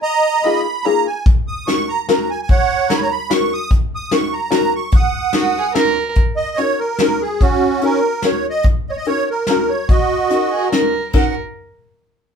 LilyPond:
<<
  \new Staff \with { instrumentName = "Accordion" } { \time 3/4 \key ees \minor \tempo 4 = 146 << { bes''4 ces'''4 bes''8 aes''8 | r8 ees'''8 des'''8 bes''8 \tuplet 3/2 { bes''8. aes''8 aes''16 } | ges''4 bes''32 ces'''32 bes''16 ces'''8 des'''8 ees'''8 | r8 ees'''8 des'''8 bes''8 bes''8 des'''8 |
ees'''2 r4 | r8 ees''8 des''8 bes'8 bes'8 aes'8 | ges'4 bes'4 des''8 ees''8 | r8 ees''32 des''32 ees''16 des''8 bes'8 bes'8 des''8 |
ees''2 r4 | ges''8 r2 r8 | } \\ { ees''4. r4. | r2. | des''4. r4. | r2. |
ges''2 r4 | r2. | des'4. r4. | r2. |
ges'2 r4 | r2. | } >> }
  \new Staff \with { instrumentName = "Violin" } { \time 3/4 \key ees \minor r2. | r2. | r2. | r2. |
r4 ges'8 aes'8 bes'4 | r2. | r2. | r2. |
r4 ges'8 aes'8 bes'4 | bes'8 r2 r8 | }
  \new Staff \with { instrumentName = "Five-string banjo" } { \time 3/4 \key ees \minor r4 <bes ees' f' aes'>8 r8 <bes ees' f' aes'>8 r8 | r4 <des' ees' ges' bes'>8 r8 <des' ees' ges' bes'>8 r8 | r4 <des' ees' ges' bes'>8 r8 <des' ees' ges' bes'>8 r8 | r4 <des' ees' ges' bes'>8 r8 <des' ees' ges' bes'>8 r8 |
r4 <des' ees' ges' bes'>8 r8 <des' ees' ges' bes'>8 r8 | r4 <des' ees' ges' bes'>8 r8 <des' ees' ges' bes'>8 r8 | r4 <des' ees' ges' bes'>8 r8 <des' ees' ges' bes'>8 r8 | r4 <des' ees' ges' bes'>8 r8 <des' ees' ges' bes'>8 r8 |
r4 <des' ees' ges' bes'>8 r8 <des' ees' ges' bes'>8 r8 | <des' ees' ges' bes'>8 r2 r8 | }
  \new DrumStaff \with { instrumentName = "Drums" } \drummode { \time 3/4 r4 r4 r4 | <hh bd>4 <hh sn>4 <hh sn>4 | <hh bd>4 <hh sn>4 <hh sn>4 | <hh bd>4 <hh sn>4 <hh sn>4 |
<hh bd>4 <hh sn>4 <hh sn>4 | <hh bd>4 hh4 <hh sn>4 | <hh bd>4 hh4 <hh sn>4 | <hh bd>4 hh4 <hh sn>4 |
<hh bd>4 hh4 <hh sn>4 | <cymc bd>4 r4 r4 | }
>>